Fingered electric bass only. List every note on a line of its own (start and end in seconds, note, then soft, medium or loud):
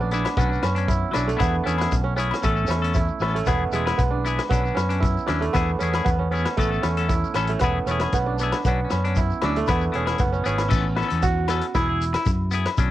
0.00 0.25 A#1 medium
0.37 0.57 B1 medium
0.63 1.02 F#2 medium
1.16 1.35 B1 medium
1.40 1.60 E2 medium
1.67 1.86 E2 medium
1.92 2.31 B1 medium
2.44 2.64 A1 medium
2.68 3.08 E2 medium
3.20 3.40 A1 medium
3.47 3.67 E1 medium
3.72 3.92 E1 medium
3.99 4.38 B1 medium
4.51 4.70 B1 medium
4.77 5.16 F#2 medium
5.29 5.48 D#2 medium
5.54 5.74 E2 medium
5.81 6.00 E2 medium
6.05 6.45 E2 medium
6.58 6.77 A1 medium
6.84 7.23 E2 medium
7.35 7.55 A1 medium
7.61 7.80 E1 medium
7.86 8.06 E1 medium
8.12 8.52 B1 medium
8.65 8.85 B1 medium
8.92 9.31 F#2 medium
9.43 9.62 D2 medium
9.69 9.88 E2 medium
9.95 10.18 E1 medium
10.20 10.43 F#1 medium
10.46 10.69 G#1 medium
10.72 11.01 A1 medium
11.12 11.60 E2 medium
11.75 12.14 E1 medium
12.26 12.66 F#2 medium
12.78 12.91 B1 medium